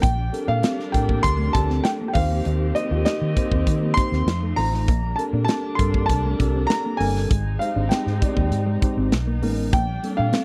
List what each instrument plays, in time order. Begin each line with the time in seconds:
0.02 fingered electric bass A#1, string section F3 G3 D4, clean electric guitar A#3, grand piano G5, kick, closed hi-hat
0.33 tine electric piano C4 D4 G4 A4 A#4, muted clean electric guitar stroke, closed hi-hat
0.47 fingered electric bass A#2, clean electric guitar D4, grand piano F5
0.63 clean electric guitar C4, snare, closed hi-hat
0.80 snare
0.92 fingered electric bass A2, tine electric piano C4 D4 G4 A4 A#4, grand piano G5, muted clean electric guitar stroke, kick, closed hi-hat
1.09 clean electric guitar A#3, kick
1.23 fingered electric bass D2, grand piano C6, kick, closed hi-hat
1.38 clean electric guitar A3
1.53 fingered electric bass D2, tine electric piano A3 C4 D4 G4 A4, grand piano A5, kick, closed hi-hat
1.70 clean electric guitar C4, snare
1.84 grand piano G5, snare, closed hi-hat
2.01 clean electric guitar A#3
2.08 grand piano G5
2.14 fingered electric bass D#2, string section D#3 C4 G4, tine electric piano A#3 C4 D#4 G4 C5, clean electric guitar A#3, grand piano F5, kick, open hi-hat
2.45 fingered electric bass D#2, clean electric guitar D#4, closed hi-hat
2.75 tine electric piano A#3 C4 D#4 G4 C5, grand piano D#5, muted clean electric guitar stroke, closed hi-hat
2.91 fingered electric bass D#2, clean electric guitar F4
3.05 clean electric guitar D#4, grand piano D#5, muted fingered electric bass stroke, snare, closed hi-hat
3.21 fingered electric bass D#3
3.36 tine electric piano A#3 C4 D#4 G4 C5, muted clean electric guitar stroke, kick, closed hi-hat
3.51 fingered electric bass D#2, clean electric guitar C4, kick
3.67 fingered electric bass D#3, kick, closed hi-hat
3.83 clean electric guitar A#3
3.94 tine electric piano A#3 C4 D#4 G4, grand piano C6, kick, closed hi-hat
3.98 tine electric piano C5
4.12 fingered electric bass D#2, clean electric guitar C4, snare
4.27 fingered electric bass F2, string section F3 A3 D#4, snare, closed hi-hat
4.43 clean electric guitar A3
4.56 fingered electric bass A1, tine electric piano A3 C4 D#4 F4 C5, clean electric guitar A3, grand piano A#5, open hi-hat
4.74 snare
4.88 fingered electric bass A#1, string section G3 A#3 D4, clean electric guitar A#3, kick, closed hi-hat
5.16 tine electric piano C4 D4 G4 A4 A#4, grand piano A5, muted clean electric guitar stroke, closed hi-hat
5.33 fingered electric bass A#2, clean electric guitar D4
5.45 clean electric guitar C4, grand piano A5, closed hi-hat
5.49 snare
5.75 fingered electric bass G2, tine electric piano C4 D4 G4 A4 A#4, grand piano C6, kick, closed hi-hat
5.80 muted clean electric guitar stroke
5.94 clean electric guitar A#3, kick
6.06 fingered electric bass C2, grand piano A5, kick, closed hi-hat
6.25 clean electric guitar A3
6.39 fingered electric bass C2, tine electric piano C4 D4 G4 A4 A#4, muted clean electric guitar stroke, kick, closed hi-hat
6.56 clean electric guitar C4
6.67 grand piano A#5, snare, closed hi-hat
6.71 muted clean electric guitar stroke
6.86 clean electric guitar A#3
6.97 fingered electric bass G1, tine electric piano G3 C4 D4 A4 A#4, clean electric guitar A#3, grand piano G#5, open hi-hat
7.16 snare
7.30 fingered electric bass G#1, clean electric guitar G#3, string section G#3 C4 D#4, kick, closed hi-hat
7.59 tine electric piano G#3 C4 D#4 G4 C5, grand piano F5, muted clean electric guitar stroke, closed hi-hat
7.76 fingered electric bass G#1, clean electric guitar D4
7.89 clean electric guitar C4, grand piano G5, muted fingered electric bass stroke, snare, closed hi-hat
8.07 fingered electric bass G#2, snare
8.21 tine electric piano G#3 C4 D#4 G4 D5, muted clean electric guitar stroke, kick, closed hi-hat
8.35 fingered electric bass D#2, clean electric guitar A#3, kick
8.51 fingered electric bass G#2, closed hi-hat
8.66 clean electric guitar G#3
8.82 tine electric piano G#3 C4 D#4 G4 C5, muted clean electric guitar stroke, kick, closed hi-hat
8.97 fingered electric bass G#1, clean electric guitar C4
9.12 fingered electric bass B1, string section B3 D#4, muted clean electric guitar stroke, snare, closed hi-hat
9.27 clean electric guitar A#3
9.42 fingered electric bass A1, tine electric piano G#3 B3 C#4 D#4 A#4, clean electric guitar A#3, open hi-hat
9.73 fingered electric bass A#1, string section G3 D4, clean electric guitar A#3, grand piano G5, kick, closed hi-hat
10.03 tine electric piano G3 A#3 C4 D4 A4, muted clean electric guitar stroke, closed hi-hat
10.17 fingered electric bass A#2, clean electric guitar D4, grand piano F5
10.32 clean electric guitar C4, snare, closed hi-hat